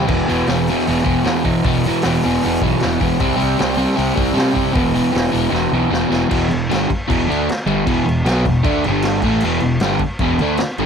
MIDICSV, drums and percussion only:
0, 0, Header, 1, 2, 480
1, 0, Start_track
1, 0, Key_signature, 1, "minor"
1, 0, Tempo, 389105
1, 117, Time_signature, 4, 2, 24, 8
1, 13396, End_track
2, 0, Start_track
2, 0, Title_t, "Drums"
2, 103, Note_on_c, 9, 49, 119
2, 110, Note_on_c, 9, 36, 122
2, 227, Note_off_c, 9, 49, 0
2, 234, Note_off_c, 9, 36, 0
2, 359, Note_on_c, 9, 46, 59
2, 482, Note_off_c, 9, 46, 0
2, 579, Note_on_c, 9, 46, 92
2, 594, Note_on_c, 9, 38, 127
2, 703, Note_off_c, 9, 46, 0
2, 717, Note_off_c, 9, 38, 0
2, 825, Note_on_c, 9, 46, 61
2, 948, Note_off_c, 9, 46, 0
2, 973, Note_on_c, 9, 38, 31
2, 1074, Note_on_c, 9, 46, 91
2, 1096, Note_off_c, 9, 38, 0
2, 1197, Note_off_c, 9, 46, 0
2, 1203, Note_on_c, 9, 38, 32
2, 1298, Note_on_c, 9, 46, 70
2, 1308, Note_on_c, 9, 36, 97
2, 1326, Note_off_c, 9, 38, 0
2, 1422, Note_off_c, 9, 46, 0
2, 1432, Note_off_c, 9, 36, 0
2, 1536, Note_on_c, 9, 46, 85
2, 1551, Note_on_c, 9, 38, 120
2, 1659, Note_off_c, 9, 46, 0
2, 1674, Note_off_c, 9, 38, 0
2, 1787, Note_on_c, 9, 46, 62
2, 1789, Note_on_c, 9, 36, 88
2, 1911, Note_off_c, 9, 46, 0
2, 1913, Note_off_c, 9, 36, 0
2, 2027, Note_on_c, 9, 46, 93
2, 2031, Note_on_c, 9, 36, 127
2, 2150, Note_off_c, 9, 46, 0
2, 2154, Note_off_c, 9, 36, 0
2, 2264, Note_on_c, 9, 46, 61
2, 2387, Note_off_c, 9, 46, 0
2, 2490, Note_on_c, 9, 46, 105
2, 2504, Note_on_c, 9, 38, 123
2, 2613, Note_off_c, 9, 46, 0
2, 2628, Note_off_c, 9, 38, 0
2, 2739, Note_on_c, 9, 46, 62
2, 2862, Note_off_c, 9, 46, 0
2, 2875, Note_on_c, 9, 38, 30
2, 2974, Note_on_c, 9, 46, 97
2, 2999, Note_off_c, 9, 38, 0
2, 3098, Note_off_c, 9, 46, 0
2, 3202, Note_on_c, 9, 46, 76
2, 3228, Note_on_c, 9, 36, 101
2, 3326, Note_off_c, 9, 46, 0
2, 3351, Note_off_c, 9, 36, 0
2, 3455, Note_on_c, 9, 46, 94
2, 3470, Note_on_c, 9, 38, 109
2, 3579, Note_off_c, 9, 46, 0
2, 3594, Note_off_c, 9, 38, 0
2, 3716, Note_on_c, 9, 36, 93
2, 3718, Note_on_c, 9, 46, 68
2, 3840, Note_off_c, 9, 36, 0
2, 3841, Note_off_c, 9, 46, 0
2, 3945, Note_on_c, 9, 46, 100
2, 3953, Note_on_c, 9, 36, 122
2, 4068, Note_off_c, 9, 46, 0
2, 4077, Note_off_c, 9, 36, 0
2, 4191, Note_on_c, 9, 46, 67
2, 4314, Note_off_c, 9, 46, 0
2, 4429, Note_on_c, 9, 46, 98
2, 4444, Note_on_c, 9, 38, 121
2, 4552, Note_off_c, 9, 46, 0
2, 4567, Note_off_c, 9, 38, 0
2, 4675, Note_on_c, 9, 46, 55
2, 4799, Note_off_c, 9, 46, 0
2, 4826, Note_on_c, 9, 38, 33
2, 4912, Note_on_c, 9, 46, 93
2, 4949, Note_off_c, 9, 38, 0
2, 5035, Note_off_c, 9, 46, 0
2, 5144, Note_on_c, 9, 46, 65
2, 5150, Note_on_c, 9, 36, 101
2, 5268, Note_off_c, 9, 46, 0
2, 5274, Note_off_c, 9, 36, 0
2, 5391, Note_on_c, 9, 46, 84
2, 5406, Note_on_c, 9, 38, 108
2, 5514, Note_off_c, 9, 46, 0
2, 5529, Note_off_c, 9, 38, 0
2, 5630, Note_on_c, 9, 36, 87
2, 5636, Note_on_c, 9, 46, 66
2, 5753, Note_off_c, 9, 36, 0
2, 5760, Note_off_c, 9, 46, 0
2, 5860, Note_on_c, 9, 46, 85
2, 5866, Note_on_c, 9, 36, 127
2, 5984, Note_off_c, 9, 46, 0
2, 5990, Note_off_c, 9, 36, 0
2, 6110, Note_on_c, 9, 46, 59
2, 6234, Note_off_c, 9, 46, 0
2, 6353, Note_on_c, 9, 46, 87
2, 6367, Note_on_c, 9, 38, 127
2, 6476, Note_off_c, 9, 46, 0
2, 6491, Note_off_c, 9, 38, 0
2, 6591, Note_on_c, 9, 46, 65
2, 6715, Note_off_c, 9, 46, 0
2, 6839, Note_on_c, 9, 38, 69
2, 6962, Note_off_c, 9, 38, 0
2, 7320, Note_on_c, 9, 38, 96
2, 7443, Note_off_c, 9, 38, 0
2, 7563, Note_on_c, 9, 38, 92
2, 7686, Note_off_c, 9, 38, 0
2, 7784, Note_on_c, 9, 49, 119
2, 7784, Note_on_c, 9, 57, 99
2, 7788, Note_on_c, 9, 36, 127
2, 7907, Note_off_c, 9, 49, 0
2, 7907, Note_off_c, 9, 57, 0
2, 7912, Note_off_c, 9, 36, 0
2, 8029, Note_on_c, 9, 57, 60
2, 8153, Note_off_c, 9, 57, 0
2, 8281, Note_on_c, 9, 57, 98
2, 8295, Note_on_c, 9, 38, 121
2, 8404, Note_off_c, 9, 57, 0
2, 8419, Note_off_c, 9, 38, 0
2, 8515, Note_on_c, 9, 36, 87
2, 8518, Note_on_c, 9, 57, 61
2, 8639, Note_off_c, 9, 36, 0
2, 8641, Note_off_c, 9, 57, 0
2, 8758, Note_on_c, 9, 36, 120
2, 8767, Note_on_c, 9, 57, 97
2, 8881, Note_off_c, 9, 36, 0
2, 8891, Note_off_c, 9, 57, 0
2, 9024, Note_on_c, 9, 57, 69
2, 9147, Note_off_c, 9, 57, 0
2, 9242, Note_on_c, 9, 57, 82
2, 9257, Note_on_c, 9, 38, 103
2, 9365, Note_off_c, 9, 57, 0
2, 9380, Note_off_c, 9, 38, 0
2, 9465, Note_on_c, 9, 57, 66
2, 9588, Note_off_c, 9, 57, 0
2, 9709, Note_on_c, 9, 36, 120
2, 9715, Note_on_c, 9, 57, 86
2, 9833, Note_off_c, 9, 36, 0
2, 9838, Note_off_c, 9, 57, 0
2, 9975, Note_on_c, 9, 57, 52
2, 10099, Note_off_c, 9, 57, 0
2, 10189, Note_on_c, 9, 57, 97
2, 10204, Note_on_c, 9, 38, 127
2, 10312, Note_off_c, 9, 57, 0
2, 10327, Note_off_c, 9, 38, 0
2, 10428, Note_on_c, 9, 36, 84
2, 10433, Note_on_c, 9, 57, 65
2, 10552, Note_off_c, 9, 36, 0
2, 10556, Note_off_c, 9, 57, 0
2, 10666, Note_on_c, 9, 36, 127
2, 10674, Note_on_c, 9, 57, 85
2, 10789, Note_off_c, 9, 36, 0
2, 10798, Note_off_c, 9, 57, 0
2, 10907, Note_on_c, 9, 57, 73
2, 11030, Note_off_c, 9, 57, 0
2, 11133, Note_on_c, 9, 57, 94
2, 11147, Note_on_c, 9, 38, 127
2, 11256, Note_off_c, 9, 57, 0
2, 11271, Note_off_c, 9, 38, 0
2, 11374, Note_on_c, 9, 36, 105
2, 11377, Note_on_c, 9, 57, 96
2, 11498, Note_off_c, 9, 36, 0
2, 11501, Note_off_c, 9, 57, 0
2, 11601, Note_on_c, 9, 57, 103
2, 11725, Note_off_c, 9, 57, 0
2, 11847, Note_on_c, 9, 57, 59
2, 11970, Note_off_c, 9, 57, 0
2, 12088, Note_on_c, 9, 57, 90
2, 12103, Note_on_c, 9, 38, 125
2, 12211, Note_off_c, 9, 57, 0
2, 12226, Note_off_c, 9, 38, 0
2, 12325, Note_on_c, 9, 57, 61
2, 12330, Note_on_c, 9, 36, 82
2, 12449, Note_off_c, 9, 57, 0
2, 12454, Note_off_c, 9, 36, 0
2, 12570, Note_on_c, 9, 57, 85
2, 12573, Note_on_c, 9, 36, 120
2, 12693, Note_off_c, 9, 57, 0
2, 12696, Note_off_c, 9, 36, 0
2, 12816, Note_on_c, 9, 57, 64
2, 12939, Note_off_c, 9, 57, 0
2, 13044, Note_on_c, 9, 57, 83
2, 13059, Note_on_c, 9, 38, 127
2, 13167, Note_off_c, 9, 57, 0
2, 13182, Note_off_c, 9, 38, 0
2, 13300, Note_on_c, 9, 57, 61
2, 13396, Note_off_c, 9, 57, 0
2, 13396, End_track
0, 0, End_of_file